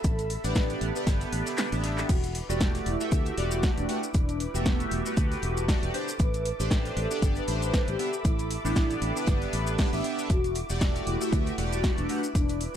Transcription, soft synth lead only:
0.04 A4
0.44 B4
2.09 F#4
2.86 E4
3.26 F#4
3.52 F#4
3.78 D4
4.14 D4
4.55 B3
6.20 B4
6.97 A4
7.37 B4
7.62 B4
7.88 G4
8.25 E4
8.65 E4
10.30 F#4
11.07 E4
11.47 F#4
11.72 F#4
11.98 D4
12.35 D4

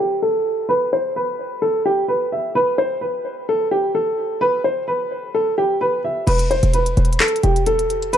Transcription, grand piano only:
0.00 G4
0.22 A4
0.69 B4
0.93 C5
1.16 B4
1.62 A4
1.85 G4
2.08 B4
2.32 E5
2.55 B4
2.78 C5
3.01 B4
3.49 A4
3.71 G4
3.95 A4
4.41 B4
4.64 C5
4.88 B4
5.35 A4
5.58 G4
5.81 B4
6.04 E5
6.27 B4
6.51 C5
6.74 B4
7.20 A4
7.43 G4
7.67 A4
8.13 B4

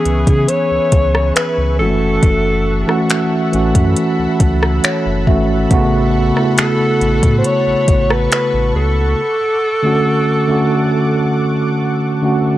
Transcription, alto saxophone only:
Already playing: G#4
0.49 C#5
1.36 B4
1.79 A4
6.59 A4
7.38 C5
7.46 C#5
8.11 B4
8.33 B4
8.76 A4

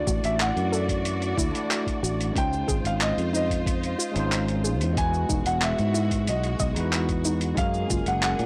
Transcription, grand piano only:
Already playing: D5
0.25 E5
0.42 F#5
0.74 D5
2.38 G5
2.86 F5
3.02 D#5
3.36 D#5
4.98 G#5
5.47 F#5
5.63 E5
6.29 D#5
7.58 F5
8.08 F#5
8.24 F#5

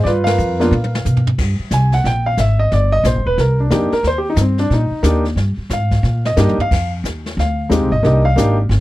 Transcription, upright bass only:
0.05 G2
0.38 F2
0.71 A#2
1.05 B2
1.38 G2
1.59 muted upright bass stroke
1.71 C2
2.04 A#1
2.37 G#1
2.72 G1
3.04 A#1
3.15 G1
3.26 D#1
3.38 C2
3.71 F2
3.92 muted upright bass stroke
4.03 D#2
4.36 G2
4.70 A#2
4.91 muted upright bass stroke
5.03 D#2
5.36 G2
5.57 muted upright bass stroke
5.70 G#2
6.03 A#2
6.37 G2
6.58 muted upright bass stroke
6.71 F2
7.04 D#2
7.37 D2
7.70 D#2
7.81 C2
7.92 G#1
8.03 C2
8.36 G#1
8.69 G1

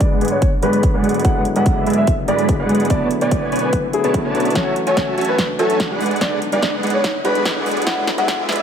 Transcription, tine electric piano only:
Already playing: D3 F#3 G#3 B3 D4
0.62 D3 F#3 G#3 B3 F#4
1.23 D3 F#3 G#3 B3
1.27 E4
2.26 D3 F#3 G#3 B3
2.30 E4
2.88 D3 F#3 A3 B3
2.92 E4
3.93 D3 F#3 A3 B3 E4
4.34 D3 F#3 A3 B3 F#4
4.54 E3 F#3 A3 C#4 F#4
5.58 E3 F#3 A3 C#4 F#4
6.19 D3 F#3 G#3 B3
6.23 D4
7.24 D3 F#3 G#3 B3 F#4
7.85 D3 F#3 G#3 B3 E4

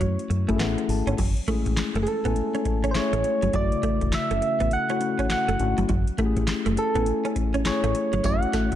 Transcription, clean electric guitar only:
0.01 F#3
0.30 muted clean electric guitar stroke
0.49 A3
0.60 B3
0.78 muted clean electric guitar stroke
1.07 C#4
1.19 F#3
1.48 A3
1.66 muted clean electric guitar stroke
1.96 A3
2.07 muted clean electric guitar stroke
2.25 B3
2.55 C#4
2.66 muted clean electric guitar stroke
2.84 C#4
3.13 A3
3.24 muted clean electric guitar stroke
3.43 F#3
3.54 F#3
3.83 A3
4.01 muted clean electric guitar stroke
4.31 A3
4.42 muted clean electric guitar stroke
4.60 B3
4.90 C#4
5.01 muted clean electric guitar stroke
5.19 C#4
5.48 A3
5.60 muted clean electric guitar stroke
5.78 F#3
5.89 F#3
6.19 A3
6.37 muted clean electric guitar stroke
6.66 A3
6.77 muted clean electric guitar stroke
6.96 B3
7.25 C#4
7.36 muted clean electric guitar stroke
7.54 C#4
7.84 A3
7.95 muted clean electric guitar stroke
8.13 F#3
8.24 F#3
8.54 A3
8.72 muted clean electric guitar stroke

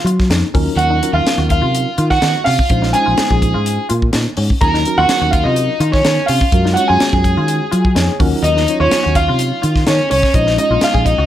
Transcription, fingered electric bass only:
0.04 F#3
0.29 F2
0.55 D#2
0.76 D#2
1.13 D#2
1.38 D#2
1.62 C3
1.98 D#3
2.22 D#3
2.47 C3
2.70 A#1
3.08 A#1
3.19 muted fingered electric bass stroke
3.30 A#1
3.55 G#2
3.90 A#2
4.14 A#2
4.37 G#2
4.61 D#2
4.98 D#2
5.09 muted fingered electric bass stroke
5.21 D#2
5.45 C3
5.80 D#3
6.05 D#3
6.29 C3
6.53 F#2
6.90 F#2
7.01 muted fingered electric bass stroke
7.13 F#2
7.37 D#3
7.73 F#3
7.96 F2
8.20 D#2
8.43 D#2
8.80 D#2
9.06 D#2
9.29 C3
9.64 D#3
9.88 D#3
10.12 C2
10.34 A#1
10.70 A#1
10.94 A#1
11.18 C#2

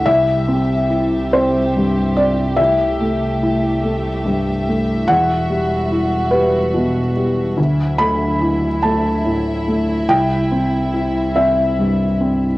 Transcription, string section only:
Already playing: E5
0.06 G3 G4
2.59 A3 E5
5.06 G3 F#4
7.58 F#3 E4 E5
10.08 G3

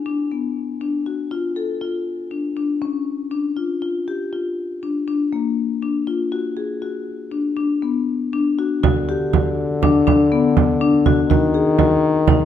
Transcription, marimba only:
0.06 D4
0.32 B3
0.81 D4
1.06 F#4
1.31 F4
1.56 A4
1.81 F4
2.31 D4
2.57 D4
2.82 C#4
3.31 D4
3.57 F4
3.82 F4
4.08 G4
4.33 F4
4.83 D4
5.08 D4
5.33 A#3
5.82 D4
6.07 F4
6.32 F#4
6.57 G#4
6.82 F#4
7.32 D4
7.57 D4
7.82 B3
8.33 D4
8.59 F#4
8.83 F#4
9.09 G4
9.33 F#4
9.83 D4
10.07 D4
10.32 B3
10.81 D4
11.06 F#4
11.30 F#4
11.54 G#4
11.79 F#4
12.28 D#4

